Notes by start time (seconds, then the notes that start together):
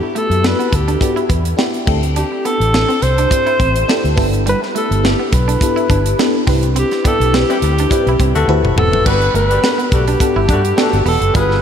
Already playing: B3 D4 E4 F#4 G4
0.03 muted clean electric guitar stroke
0.15 A3 A4, closed hi-hat
0.30 F#2, closed hi-hat
0.43 B3 D4 E4 F#4 A4 B4, snare
0.59 B3, closed hi-hat
0.72 D2 G4, muted clean electric guitar stroke, kick, closed hi-hat
0.88 D4, closed hi-hat
1.00 B3 D4 E4 F#4 G4, muted clean electric guitar stroke, kick, closed hi-hat
1.16 E4, closed hi-hat
1.29 E2 B3, kick, closed hi-hat
1.45 closed hi-hat
1.57 B3 D4 E4 F#4 G4, snare
1.74 closed hi-hat
1.86 D2 A3 C4 D4 E4 G4 A4, kick, crash
2.03 closed hi-hat
2.16 D4 G4, closed hi-hat
2.32 muted clean electric guitar stroke
2.45 B3 A4, closed hi-hat
2.60 A1, closed hi-hat
2.73 C4 D4 E4 G4 A4, snare
2.89 C4, closed hi-hat
3.02 C2 C5, muted clean electric guitar stroke, closed hi-hat
3.18 D4, closed hi-hat
3.31 C4 D4 E4 G4 C5, muted clean electric guitar stroke, kick, closed hi-hat
3.46 E4, closed hi-hat
3.60 A1 C4, kick, closed hi-hat
3.76 closed hi-hat
3.88 C4 D4 E4 G4 A4, snare
4.04 D2, closed hi-hat
4.15 G1 B3 D4 E4 G4 A4, kick, snare, open hi-hat
4.33 closed hi-hat
4.46 G3 B4, closed hi-hat
4.62 muted clean electric guitar stroke, snare
4.75 A3 A4, closed hi-hat
4.91 G1, closed hi-hat
5.03 B3 D4 E4 G4 A4, snare
5.19 B3
5.32 B1 B4, muted clean electric guitar stroke, kick, closed hi-hat
5.48 D4, closed hi-hat
5.61 B3 D4 E4 G4 A4, muted clean electric guitar stroke, kick, closed hi-hat
5.76 E4, closed hi-hat
5.90 G1 D4, kick, closed hi-hat
6.06 closed hi-hat
6.19 B3 D4 E4 G4 A4, snare
6.47 C2 C4 D4 E4 G4 B4, kick, snare, open hi-hat
6.63 closed hi-hat
6.76 C4 G4, closed hi-hat
6.91 muted clean electric guitar stroke, snare, closed hi-hat
7.04 G3 B3 D4 E4 G4 A4, kick, closed hi-hat
7.20 B1, closed hi-hat
7.33 C4 D4 E4 G4 B4, snare
7.49 G3 C4 D4 E4 G4, closed hi-hat
7.62 D2, muted clean electric guitar stroke, closed hi-hat
7.79 D4, closed hi-hat
7.90 G3 C4 D4 E4 G4 B4, muted clean electric guitar stroke, kick, closed hi-hat
8.07 B1 E4, closed hi-hat
8.20 C2 C4, kick, closed hi-hat
8.35 D2 A3 E4 F#4 A4, closed hi-hat
8.48 D2 C4 E4 F#4 A4 B4, high tom
8.63 F#1, mid tom
8.76 E1 B3 A4, mid tom
8.92 F#1, floor tom
9.05 G1 G3 B3 D4 F#4 G4 A4 B4, kick, crash
9.21 muted clean electric guitar stroke, closed hi-hat
9.34 G1 A3 B4, closed hi-hat
9.50 G3 B3 D4 G4, closed hi-hat
9.62 B3 D4 F#4 G4 A4, snare
9.78 B3, closed hi-hat
9.92 B1 A3 D4 F#4 G4 A4, muted clean electric guitar stroke, kick, closed hi-hat
10.07 D4, closed hi-hat
10.20 B3 D4 G4 A4 F#5, muted clean electric guitar stroke, kick, closed hi-hat
10.36 G1 E4
10.48 G2 A3 D4 F#4 A4, kick, closed hi-hat
10.65 closed hi-hat
10.76 A3 B3 D4 F#4 G4 A4, snare
10.93 G1, closed hi-hat
11.06 E1 B3 A4, open hi-hat
11.21 F#1, closed hi-hat
11.34 G1 G3 B3 D4 F4 G4 G#4 B4, kick, closed hi-hat
11.50 muted clean electric guitar stroke, snare